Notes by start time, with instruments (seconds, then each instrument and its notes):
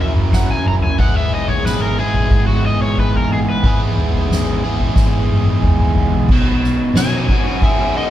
Already playing: picked electric bass A#1, transistor combo organ F#3 E4 A#4, overdriven electric guitar F#3 C#4 E4 A#4
0.01 electric slide guitar E5
0.14 picked electric bass F#1
0.32 electric slide guitar F#5, kick, snare
0.49 electric slide guitar G#5, floor tom
0.64 picked electric bass F#1, electric slide guitar A#5
0.83 electric slide guitar G#5, mid tom
0.97 picked electric bass G#1, overdriven electric guitar G#2 E3 G#3 B3 E4 G#4, transistor combo organ E3 G#4, electric slide guitar F#5, kick, floor tom
1.17 electric slide guitar E5
1.34 electric slide guitar D#5
1.48 electric slide guitar C#5, floor tom
1.64 picked electric bass G#1, electric slide guitar B4, snare
1.82 electric slide guitar A#4
1.98 overdriven electric guitar G#2 E3 G#3 B3 E4 G#4, electric slide guitar G#4
2.14 floor tom
2.30 picked electric bass G#1, kick
2.47 electric slide guitar F#4, floor tom
2.66 electric slide guitar D#5
2.80 picked electric bass G#1, electric slide guitar C#5
2.97 electric slide guitar B4, kick
3.15 electric slide guitar A#4, floor tom
3.29 picked electric bass G#1
3.33 electric slide guitar G#4
3.50 electric slide guitar B4
3.63 picked electric bass G#1, overdriven electric guitar G#2 E3 G#3 B3 E4, kick, floor tom
3.67 overdriven electric guitar G#4
3.97 mid tom
4.13 floor tom
4.29 picked electric bass G#1, snare
4.64 overdriven electric guitar G#2 E3 G#3 B3 E4 G#4
4.80 floor tom
4.96 picked electric bass G#1, kick, snare
5.30 high tom
5.45 picked electric bass G#1
5.63 picked electric bass E2, kick, mid tom
5.78 picked electric bass D#2, mid tom
5.95 picked electric bass C#2, floor tom
6.10 picked electric bass B1, floor tom
6.28 picked electric bass B1, transistor combo organ D#3 G#3 B4, kick, crash
6.32 overdriven electric guitar B2
6.44 picked electric bass B1
6.63 snare, ride
6.94 picked electric bass B2, overdriven electric guitar F#3, snare, ride
6.98 electric slide guitar G#5
7.28 overdriven electric guitar F#4, kick, ride
7.61 overdriven electric guitar G#4, electric slide guitar E5, kick, ride
7.95 overdriven electric guitar F#4, electric slide guitar D#5, ride